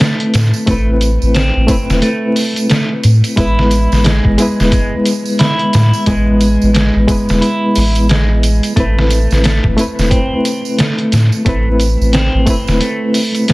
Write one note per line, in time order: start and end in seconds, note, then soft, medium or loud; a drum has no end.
0.00 0.64 A3 medium
0.00 0.65 A3 medium
0.00 0.65 C4 medium
0.00 0.69 E4 medium
0.00 0.71 B4 medium
0.00 snare loud
0.00 tambourine soft
0.20 closed hi-hat soft
0.34 0.52 A2 loud
0.34 snare medium
0.34 closed hi-hat medium
0.34 tambourine medium
0.54 tambourine medium
0.66 1.18 A1 loud
0.66 1.65 A3 medium
0.66 0.90 A3 medium
0.66 1.66 C4 medium
0.66 1.66 E4 medium
0.66 kick loud
0.66 closed hi-hat medium
0.66 tambourine soft
0.71 1.67 B4 loud
1.01 closed hi-hat medium
1.01 tambourine medium
1.22 1.51 A1 loud
1.22 tambourine soft
1.34 2.00 C4 loud
1.34 snare loud
1.34 closed hi-hat medium
1.34 tambourine soft
1.56 1.68 A1 medium
1.67 3.33 A3 medium
1.67 3.34 C4 medium
1.67 3.34 E4 medium
1.67 kick medium
1.67 closed hi-hat medium
1.67 tambourine loud
1.71 3.35 B4 medium
1.89 2.01 E1 medium
1.89 snare soft
1.89 tambourine medium
2.02 2.67 A3 medium
2.02 closed hi-hat medium
2.02 tambourine soft
2.36 open hi-hat medium
2.36 tambourine medium
2.56 closed hi-hat soft
2.56 tambourine medium
2.70 2.92 A3 medium
2.70 snare loud
2.70 closed hi-hat medium
2.70 tambourine soft
3.03 3.22 A2 medium
3.03 closed hi-hat medium
3.03 tambourine medium
3.24 closed hi-hat soft
3.24 tambourine medium
3.36 3.87 A1 loud
3.36 4.35 G#3 medium
3.36 4.35 B3 medium
3.36 4.02 E4 loud
3.36 4.36 E4 medium
3.36 4.37 B4 loud
3.36 kick loud
3.36 closed hi-hat medium
3.36 tambourine soft
3.59 snare soft
3.71 closed hi-hat medium
3.71 tambourine medium
3.92 4.20 A1 loud
3.92 snare soft
3.92 tambourine soft
4.04 4.69 G#3 medium
4.04 snare loud
4.04 closed hi-hat medium
4.04 tambourine soft
4.25 4.37 A1 medium
4.25 kick medium
4.38 6.03 G#3 medium
4.38 6.04 B3 medium
4.38 6.05 E4 medium
4.38 closed hi-hat medium
4.38 tambourine loud
4.42 6.06 B4 loud
4.60 4.71 E1 medium
4.60 snare soft
4.60 tambourine soft
4.72 4.94 G#3 medium
4.72 kick loud
4.72 closed hi-hat medium
4.72 tambourine soft
5.05 closed hi-hat medium
5.05 tambourine medium
5.25 tambourine soft
5.39 6.04 E4 loud
5.39 snare loud
5.39 closed hi-hat medium
5.39 tambourine soft
5.59 closed hi-hat soft
5.73 5.92 A2 loud
5.73 snare medium
5.73 closed hi-hat medium
5.73 tambourine medium
5.94 tambourine medium
6.06 6.57 A1 loud
6.06 6.72 G#3 medium
6.06 7.05 G#3 medium
6.06 7.06 B3 medium
6.06 7.06 E4 medium
6.06 kick loud
6.06 closed hi-hat medium
6.06 tambourine soft
6.11 7.07 B4 loud
6.41 closed hi-hat medium
6.41 tambourine medium
6.61 6.91 A1 loud
6.61 tambourine soft
6.74 6.96 G#3 medium
6.74 snare loud
6.74 closed hi-hat medium
6.74 tambourine soft
6.96 7.07 A1 medium
7.08 8.73 G#3 medium
7.08 8.74 B3 medium
7.08 8.74 E4 medium
7.08 8.75 B4 loud
7.08 kick loud
7.08 closed hi-hat medium
7.08 tambourine loud
7.29 7.41 E1 medium
7.29 snare soft
7.29 tambourine medium
7.41 8.06 E4 loud
7.41 closed hi-hat medium
7.41 tambourine soft
7.75 8.60 A1 medium
7.75 open hi-hat medium
7.75 tambourine medium
7.95 closed hi-hat soft
7.95 tambourine medium
8.09 8.74 G#3 medium
8.09 snare loud
8.09 closed hi-hat medium
8.09 tambourine soft
8.43 closed hi-hat medium
8.43 tambourine medium
8.63 closed hi-hat soft
8.63 tambourine medium
8.76 9.27 A1 loud
8.76 9.74 A3 medium
8.76 9.41 A3 medium
8.76 9.75 C4 medium
8.76 9.76 E4 medium
8.76 kick loud
8.76 closed hi-hat medium
8.76 tambourine soft
8.80 9.76 B4 medium
8.99 snare soft
9.11 closed hi-hat medium
9.11 tambourine medium
9.31 9.60 A1 loud
9.31 snare soft
9.31 tambourine soft
9.44 9.66 A3 medium
9.44 snare loud
9.44 closed hi-hat medium
9.44 tambourine soft
9.64 9.76 A1 medium
9.64 kick medium
9.77 11.43 A3 medium
9.77 11.43 C4 medium
9.77 11.44 E4 medium
9.77 closed hi-hat medium
9.77 tambourine loud
9.81 11.45 B4 medium
9.98 10.10 E1 medium
9.98 snare soft
9.98 tambourine medium
10.11 10.76 C4 loud
10.11 kick loud
10.11 closed hi-hat medium
10.11 tambourine soft
10.45 closed hi-hat medium
10.45 tambourine medium
10.65 tambourine medium
10.78 11.43 A3 medium
10.78 snare loud
10.78 closed hi-hat medium
10.78 tambourine soft
10.99 closed hi-hat soft
11.12 11.30 A2 loud
11.12 snare medium
11.12 closed hi-hat medium
11.12 tambourine medium
11.32 tambourine soft
11.45 11.96 A1 loud
11.45 12.43 A3 medium
11.45 11.68 A3 medium
11.45 12.44 C4 medium
11.45 12.45 E4 medium
11.45 kick loud
11.45 closed hi-hat medium
11.45 tambourine soft
11.49 12.45 B4 loud
11.80 closed hi-hat medium
11.80 tambourine medium
12.01 12.29 A1 loud
12.01 tambourine soft
12.13 12.78 C4 loud
12.13 snare loud
12.13 closed hi-hat medium
12.13 tambourine soft
12.34 12.46 A1 medium
12.46 13.53 A3 medium
12.46 13.53 C4 medium
12.46 13.53 E4 medium
12.46 kick medium
12.46 closed hi-hat medium
12.46 tambourine medium
12.50 13.53 B4 medium
12.67 12.80 E1 medium
12.67 snare soft
12.67 tambourine soft
12.81 13.46 A3 medium
12.81 closed hi-hat medium
12.81 tambourine soft
13.14 open hi-hat medium
13.14 tambourine medium
13.35 closed hi-hat soft
13.35 tambourine medium
13.48 13.53 A3 medium
13.48 snare loud
13.48 closed hi-hat medium
13.48 tambourine soft